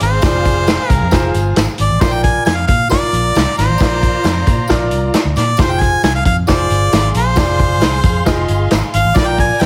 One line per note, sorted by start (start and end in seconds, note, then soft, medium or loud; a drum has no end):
0.00 0.18 G#1 loud
0.00 1.99 C4 medium
0.00 1.99 G#4 medium
0.00 0.90 C5 medium
0.00 1.98 F5 medium
0.00 closed hi-hat medium
0.00 tambourine medium
0.22 0.76 F1 loud
0.22 0.75 F4 medium
0.22 0.75 G#4 medium
0.22 0.75 D5 medium
0.22 kick loud
0.22 snare loud
0.22 closed hi-hat loud
0.22 tambourine loud
0.45 kick medium
0.45 closed hi-hat medium
0.45 tambourine medium
0.67 snare loud
0.67 closed hi-hat medium
0.67 tambourine medium
0.90 0.99 C2 medium
0.90 1.32 A#4 medium
0.90 kick medium
0.90 closed hi-hat medium
0.90 tambourine medium
1.01 1.10 F2 medium
1.11 1.30 F1 medium
1.11 1.64 F4 medium
1.11 1.65 G#4 medium
1.11 1.65 C5 loud
1.11 kick medium
1.11 snare medium
1.11 closed hi-hat medium
1.11 tambourine loud
1.34 1.52 G1 medium
1.34 closed hi-hat medium
1.34 tambourine medium
1.56 1.66 G#1 medium
1.56 snare loud
1.56 closed hi-hat loud
1.56 tambourine medium
1.78 1.88 G#1 loud
1.78 2.02 D5 medium
1.78 closed hi-hat medium
1.78 tambourine medium
1.90 1.99 A1 medium
2.01 2.37 A#1 loud
2.01 2.53 F4 medium
2.01 2.54 A#4 medium
2.01 2.14 C5 loud
2.01 2.54 D5 medium
2.01 kick loud
2.01 snare loud
2.01 closed hi-hat loud
2.01 tambourine loud
2.12 2.23 G5 medium
2.23 2.44 G#5 loud
2.23 kick medium
2.23 closed hi-hat medium
2.23 tambourine medium
2.45 2.64 F2 medium
2.45 2.57 G#5 loud
2.45 snare loud
2.45 closed hi-hat medium
2.45 tambourine medium
2.55 2.67 F5 medium
2.67 2.86 A#2 loud
2.67 2.89 F5 loud
2.67 kick loud
2.67 closed hi-hat medium
2.67 tambourine medium
2.89 3.42 F4 medium
2.89 5.55 F4 medium
2.89 3.42 A#4 medium
2.89 3.54 D5 loud
2.89 3.43 D5 medium
2.89 5.55 D5 medium
2.89 5.55 A#5 medium
2.89 kick medium
2.89 snare medium
2.89 closed hi-hat medium
2.89 tambourine loud
3.02 muted fingered electric bass stroke soft
3.12 3.31 A#1 medium
3.12 closed hi-hat medium
3.12 tambourine medium
3.35 3.45 C2 medium
3.35 snare loud
3.35 closed hi-hat loud
3.35 tambourine loud
3.57 3.67 G#1 loud
3.57 4.88 C5 medium
3.57 snare soft
3.57 closed hi-hat medium
3.57 tambourine medium
3.69 3.78 A1 medium
3.78 4.32 F4 medium
3.78 4.32 A#4 medium
3.78 4.33 D5 medium
3.78 kick loud
3.78 snare loud
3.78 closed hi-hat loud
3.78 tambourine loud
4.01 kick medium
4.01 closed hi-hat medium
4.01 tambourine medium
4.24 4.42 F2 medium
4.24 snare loud
4.24 closed hi-hat medium
4.24 tambourine medium
4.47 4.65 A#2 medium
4.47 kick medium
4.47 closed hi-hat medium
4.47 tambourine medium
4.68 4.92 A#1 medium
4.68 5.21 F4 medium
4.68 5.21 A#4 medium
4.68 5.22 D5 medium
4.68 kick medium
4.68 snare loud
4.68 closed hi-hat medium
4.68 tambourine loud
4.91 5.09 C2 medium
4.91 closed hi-hat medium
4.91 tambourine medium
5.14 snare loud
5.14 closed hi-hat loud
5.14 tambourine medium
5.25 5.34 D2 medium
5.36 5.54 A#2 loud
5.36 5.62 D5 medium
5.36 snare soft
5.36 closed hi-hat medium
5.36 tambourine medium
5.57 5.94 F1 medium
5.57 6.10 F4 medium
5.57 5.64 G4 medium
5.57 6.11 C5 medium
5.57 5.72 C5 loud
5.57 kick loud
5.57 snare loud
5.57 closed hi-hat loud
5.57 tambourine loud
5.64 6.13 G#4 medium
5.71 5.82 G5 medium
5.80 6.03 G#5 loud
5.80 kick medium
5.80 closed hi-hat medium
5.80 tambourine medium
6.03 6.21 C2 loud
6.03 6.14 G#5 loud
6.03 snare loud
6.03 closed hi-hat medium
6.03 tambourine medium
6.15 6.25 F5 medium
6.25 6.43 F2 loud
6.25 6.36 F5 medium
6.25 kick medium
6.25 closed hi-hat medium
6.25 tambourine medium
6.47 6.66 F1 medium
6.47 6.99 F4 medium
6.47 6.99 G#4 medium
6.47 9.12 G#4 medium
6.47 7.00 C5 medium
6.47 7.11 D5 loud
6.47 9.12 F5 medium
6.47 9.12 C6 medium
6.47 kick medium
6.47 snare loud
6.47 closed hi-hat medium
6.47 tambourine loud
6.70 6.88 G1 medium
6.70 closed hi-hat medium
6.70 tambourine medium
6.92 7.10 G#1 loud
6.92 snare loud
6.92 closed hi-hat loud
6.92 tambourine loud
7.14 7.38 A#1 loud
7.14 8.46 C5 medium
7.14 closed hi-hat medium
7.14 tambourine medium
7.36 7.82 F1 loud
7.36 7.88 F4 medium
7.36 7.88 G#4 medium
7.36 7.89 D5 loud
7.36 kick loud
7.36 snare loud
7.36 closed hi-hat loud
7.36 tambourine loud
7.59 kick medium
7.59 closed hi-hat medium
7.59 tambourine medium
7.81 8.00 C2 medium
7.81 snare loud
7.81 closed hi-hat loud
7.81 tambourine medium
8.03 8.21 F2 medium
8.03 kick loud
8.03 closed hi-hat medium
8.03 tambourine medium
8.25 8.44 F1 medium
8.25 8.78 F4 medium
8.25 8.78 G#4 medium
8.25 8.78 D#5 medium
8.25 kick medium
8.25 snare loud
8.25 closed hi-hat medium
8.25 tambourine loud
8.48 8.66 G1 loud
8.48 closed hi-hat medium
8.48 tambourine medium
8.71 8.80 G#1 loud
8.71 snare loud
8.71 closed hi-hat loud
8.71 tambourine loud
8.94 9.03 G#1 loud
8.94 9.18 F5 loud
8.94 closed hi-hat medium
8.94 tambourine medium
9.05 9.13 A1 medium
9.15 9.51 A#1 loud
9.15 9.66 F4 medium
9.15 9.66 A#4 medium
9.15 9.66 D5 medium
9.15 9.29 D5 loud
9.15 9.66 D5 medium
9.15 9.66 A#5 loud
9.15 kick loud
9.15 snare loud
9.15 closed hi-hat loud
9.15 tambourine loud
9.27 9.38 G5 loud
9.38 9.63 G#5 loud
9.38 kick medium
9.38 closed hi-hat medium
9.38 tambourine medium
9.60 9.66 F2 medium
9.60 9.66 G5 loud
9.60 snare loud
9.60 closed hi-hat medium
9.60 tambourine medium